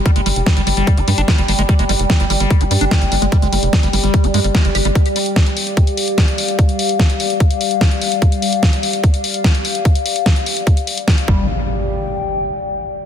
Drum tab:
HH |xxoxxxoxxxoxxxox|xxoxxxoxxxoxxxox|xxoxxxoxxxoxxxox|xxoxxxoxxxoxxxox|
SD |----o-------o---|----o-------o---|----o-------o---|----o-------o---|
BD |o---o---o---o---|o---o---o---o---|o---o---o---o---|o---o---o---o---|

HH |xxoxxxoxxxoxxxox|xxoxxxoxxxoxxxox|xxoxxxoxxxoxxx--|----------------|
SD |----o-------o---|----o-------o---|----o-------o---|----------------|
BD |o---o---o---o---|o---o---o---o---|o---o---o---o-o-|----------------|